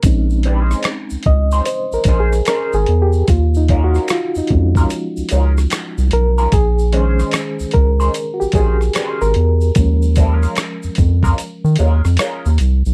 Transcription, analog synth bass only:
X:1
M:4/4
L:1/16
Q:"Swing 16ths" 1/4=74
K:Bbm
V:1 name="Analog synth bass" clef=bass
B,,,4 z D,, D,,2 z B,,, B,,,2 z A,,, =E,,2 | E,,4 z F,, F,,2 z D,, D,,2 z C,, _C,,2 | B,,,4 z D,, D,,2 z B,,, B,,,2 z A,,, =E,,2 | E,,4 z F,, F,,2 z E, E,, F,, z E,, C,, _C,, |]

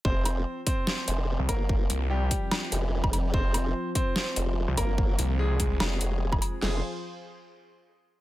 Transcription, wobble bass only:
X:1
M:4/4
L:1/16
Q:"Swing 16ths" 1/4=146
K:Fm
V:1 name="Wobble bass" clef=bass
F,,,4 z6 F,,,3 z G,,,2- | G,,,2 z8 F,,,3 F,,,3 | F,,,4 z6 F,,,3 z G,,,2- | G,,,2 z6 F,,,2 F,,,4 z2 |
F,,,2 z12 z2 |]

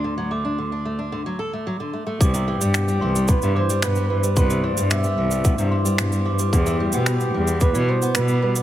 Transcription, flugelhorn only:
X:1
M:4/4
L:1/8
Q:1/4=111
K:Clyd
V:1 name="Flugelhorn"
z8 | G4 B c B B | B d e3 z3 | G4 B c B B |]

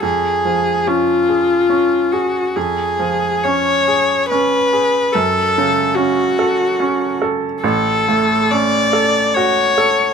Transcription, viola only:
X:1
M:3/4
L:1/8
Q:1/4=71
K:C#phr
V:1 name="Viola"
G2 ^E3 F | G2 c2 B2 | A2 F3 z | A2 d2 c2 |]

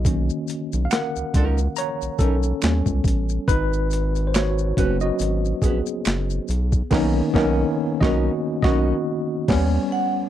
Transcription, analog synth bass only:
X:1
M:4/4
L:1/16
Q:"Swing 16ths" 1/4=70
K:B
V:1 name="Analog synth bass" clef=bass
B,,,2 z B,,, z C,, C,,2 z B,,, B,,,2 D,, C,, =A,,,2 | G,,,6 F,,,2 G,,,2 A,,, z F,,,2 B,,,2 | B,,,2 B,,,2 z B,,,2 z B,,,2 z2 D,,2 z2 |]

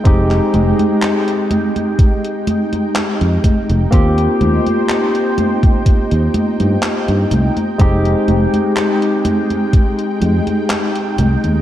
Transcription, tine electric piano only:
X:1
M:4/4
L:1/8
Q:1/4=62
K:Fm
V:1 name="Tine electric piano"
[A,CEG]6 z2 | [B,CFG]6 z2 | [A,CEG]6 z2 |]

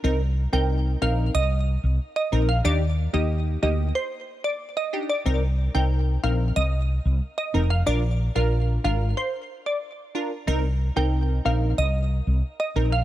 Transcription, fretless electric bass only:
X:1
M:4/4
L:1/16
Q:1/4=92
K:Cm
V:1 name="Fretless electric bass" clef=bass
C,,3 C,,3 B,,,2 C,,3 C,, z2 B,,,2 | E,,3 E,,3 D,,2 z8 | C,,3 C,,3 B,,,2 C,,3 C,, z2 F,,,2 | B,,,3 B,,,3 A,,,2 z8 |
C,,3 C,,3 B,,,2 C,,3 C,, z2 B,,,2 |]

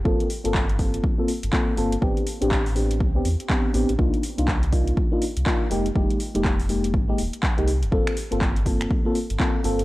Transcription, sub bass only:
X:1
M:4/4
L:1/16
Q:"Swing 16ths" 1/4=122
K:Fdor
V:1 name="Sub bass" clef=bass
G,,, z2 G,,,4- G,,, z3 G,,, z2 G,,, z | =A,,, z2 A,,,4- A,,, C,, z =E,, z3 A,,, A,,, | C,, z2 C,,4- C,, z3 C,, z2 F,,, z | F,,, z2 F,,,4- F,,, A,,, z E,,, z2 C,,2 F,,, |
G,,, z2 G,,,4- G,,, z3 G,,, z2 G,,, z |]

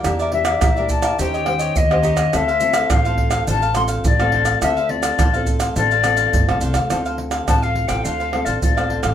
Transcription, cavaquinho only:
X:1
M:4/4
L:1/16
Q:1/4=105
K:Dm
V:1 name="Cavaquinho"
[GBde] [Bde] z [Bde] [GBde] [Bde]2 [Bde] [_EG^c_e] [Gce] z [Gce]2 [Gce] [EGce] [Gce] | [DAcf] [Acf] z [Acf] [DAcf] [Acf]2 [Acf] [DAcf] [Acf] z [Acf]2 [Acf] [DAcf] [Acf] | [DAcf] [Acf] z [Acf] [DAcf] [Acf]2 [Acf] [DAcf] [Acf] z [Acf]2 [Acf] [DAcf] [Acf] | [DAcf] [Acf] z [Acf] [DAcf] [Acf] z [Acf] [DAcf] [Acf]2 [Acf]2 [Acf] [DAcf] [Acf] |]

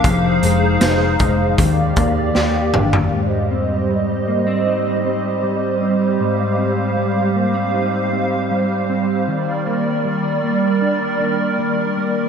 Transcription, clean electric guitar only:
X:1
M:4/4
L:1/16
Q:1/4=78
K:Ablyd
V:1 name="Clean electric guitar"
F,,2 A,2 E2 A,2 E,2 B,2 G2 D2 | A,,2 C2 G,2 B, C E2 C2 G,2 C2 | A,,2 C2 G,2 B, C E2 C2 G,2 C2 | E,2 B,2 G,2 B,2 D2 B,2 G,2 B,2 |]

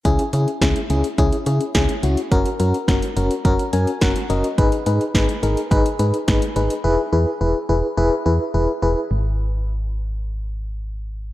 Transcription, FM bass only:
X:1
M:4/4
L:1/16
Q:1/4=106
K:Elyd
V:1 name="FM bass" clef=bass
C,, z C, z C,, z C,, z C,, z C, z C,, z C,, z | F,,, z F,, z F,,, z F,,, z F,,, z F,, z F,,, z F,,, z | G,,, z G,, z G,,, z G,,, z G,,, z G,, z G,,, z G,,, z | E,,, z E,, z E,,, z E,,, z E,,, z E,, z E,,, z E,,, z |
G,,,16 |]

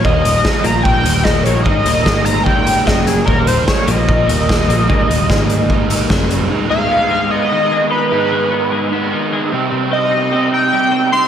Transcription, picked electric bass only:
X:1
M:4/4
L:1/8
Q:1/4=149
K:Ab
V:1 name="Picked electric bass" clef=bass
E,,, E,,, z B,,,2 E,,,2 B,,, | A,,, E,,, A,,,4 _G,,,2 | E,,, E,,, z B,,,2 E,,,2 B,,, | A,,, E,,, A,,,4 _G,,,2 |
z8 | z8 | z8 |]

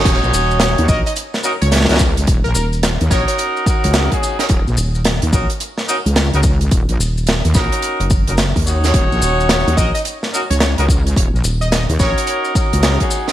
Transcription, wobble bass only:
X:1
M:4/4
L:1/16
Q:"Swing 16ths" 1/4=108
K:Ebm
V:1 name="Wobble bass" clef=bass
E,,, B,,, z3 E,, z4 z D,,2 D,,3 | E,,, B,,, z3 E,, z4 z D,,2 z3 | E,,, B,,, z3 E,, z4 z D,,2 D,,3 | E,,, B,,, z3 E,, z6 z E,,3 |
E,,, B,,, z3 E,, z4 z D,,2 D,,3 | E,,, B,,, z3 E,, z4 z D,,2 z3 |]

